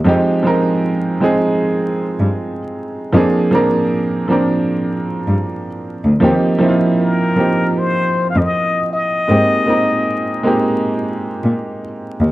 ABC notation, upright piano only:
X:1
M:4/4
L:1/16
Q:"Swing 16ths" 1/4=78
K:Eb
V:1 name="Upright piano"
[F,A,CEG]2 [F,A,CEB]4 [F,A,CEA]6- [F,A,CEA] z3 | [F,B,CDA]2 [F,B,CDB]4 [F,B,CDB]6- [F,B,CDB] z3 | [F,B,CEG]2 [F,B,CE_F=F]4 [F,B,CEG]6- [F,B,CEG] z3 | [A,B,CEG]2 [A,B,CEB]4 [A,B,CEG]6- [A,B,CEG] z3 |]